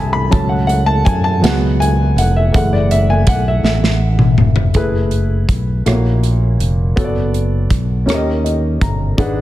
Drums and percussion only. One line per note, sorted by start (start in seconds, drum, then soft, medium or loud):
0.32 kick loud
0.32 closed hi-hat medium
0.69 closed hi-hat soft
1.06 kick medium
1.06 closed hi-hat medium
1.44 snare loud
1.44 closed hi-hat medium
1.82 closed hi-hat soft
2.18 closed hi-hat medium
2.54 kick loud
2.54 closed hi-hat medium
2.91 closed hi-hat soft
3.27 kick medium
3.27 closed hi-hat medium
3.65 snare soft
3.84 snare medium
4.19 mid tom medium
4.38 mid tom medium
4.56 floor tom medium
4.74 kick medium
4.74 closed hi-hat medium
5.11 closed hi-hat soft
5.49 kick medium
5.49 closed hi-hat medium
5.86 cross-stick medium
5.86 closed hi-hat medium
6.23 closed hi-hat soft
6.60 closed hi-hat soft
6.97 kick medium
6.97 closed hi-hat medium
7.34 closed hi-hat soft
7.70 kick medium
7.70 cross-stick soft
7.70 closed hi-hat medium
8.09 cross-stick medium
8.09 closed hi-hat medium
8.46 closed hi-hat soft
8.81 kick medium
8.81 closed hi-hat soft
9.18 kick medium
9.18 closed hi-hat medium